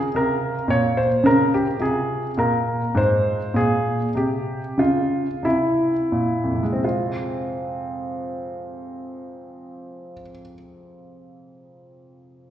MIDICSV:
0, 0, Header, 1, 2, 480
1, 0, Start_track
1, 0, Key_signature, -4, "minor"
1, 0, Tempo, 1104972
1, 785, Time_signature, 4, 2, 24, 8
1, 785, Tempo, 1160542
1, 1265, Tempo, 1200000
1, 1745, Tempo, 1273885
1, 2225, Tempo, 1369863
1, 4699, End_track
2, 0, Start_track
2, 0, Title_t, "Grand piano"
2, 0, Program_c, 0, 0
2, 0, Note_on_c, 0, 65, 39
2, 63, Note_on_c, 0, 48, 55
2, 70, Note_on_c, 0, 70, 73
2, 232, Note_off_c, 0, 48, 0
2, 296, Note_on_c, 0, 46, 60
2, 301, Note_off_c, 0, 70, 0
2, 306, Note_on_c, 0, 73, 78
2, 421, Note_off_c, 0, 73, 0
2, 423, Note_on_c, 0, 72, 72
2, 470, Note_off_c, 0, 46, 0
2, 536, Note_on_c, 0, 49, 60
2, 541, Note_off_c, 0, 72, 0
2, 547, Note_on_c, 0, 70, 76
2, 665, Note_off_c, 0, 70, 0
2, 670, Note_on_c, 0, 67, 65
2, 715, Note_off_c, 0, 49, 0
2, 765, Note_off_c, 0, 65, 0
2, 779, Note_on_c, 0, 48, 58
2, 782, Note_on_c, 0, 65, 34
2, 789, Note_off_c, 0, 67, 0
2, 789, Note_on_c, 0, 68, 66
2, 953, Note_off_c, 0, 48, 0
2, 990, Note_off_c, 0, 68, 0
2, 1020, Note_on_c, 0, 46, 55
2, 1025, Note_on_c, 0, 70, 69
2, 1195, Note_off_c, 0, 46, 0
2, 1257, Note_on_c, 0, 44, 55
2, 1266, Note_off_c, 0, 70, 0
2, 1268, Note_on_c, 0, 72, 71
2, 1431, Note_off_c, 0, 44, 0
2, 1494, Note_on_c, 0, 46, 58
2, 1503, Note_on_c, 0, 68, 73
2, 1505, Note_off_c, 0, 72, 0
2, 1672, Note_off_c, 0, 46, 0
2, 1709, Note_off_c, 0, 68, 0
2, 1728, Note_off_c, 0, 65, 0
2, 1738, Note_on_c, 0, 48, 54
2, 1746, Note_on_c, 0, 67, 63
2, 1910, Note_off_c, 0, 48, 0
2, 1974, Note_on_c, 0, 49, 50
2, 1980, Note_off_c, 0, 67, 0
2, 1980, Note_on_c, 0, 65, 63
2, 2153, Note_off_c, 0, 49, 0
2, 2220, Note_on_c, 0, 48, 55
2, 2226, Note_off_c, 0, 65, 0
2, 2228, Note_on_c, 0, 64, 59
2, 2395, Note_off_c, 0, 48, 0
2, 2463, Note_on_c, 0, 46, 53
2, 2573, Note_on_c, 0, 41, 50
2, 2608, Note_on_c, 0, 48, 44
2, 2639, Note_off_c, 0, 46, 0
2, 2641, Note_on_c, 0, 56, 44
2, 2676, Note_on_c, 0, 60, 42
2, 2710, Note_off_c, 0, 64, 0
2, 2716, Note_on_c, 0, 65, 55
2, 2805, Control_c, 0, 64, 127
2, 3861, Note_off_c, 0, 41, 0
2, 3895, Note_off_c, 0, 48, 0
2, 3928, Note_off_c, 0, 56, 0
2, 3963, Note_off_c, 0, 60, 0
2, 4004, Note_off_c, 0, 65, 0
2, 4699, End_track
0, 0, End_of_file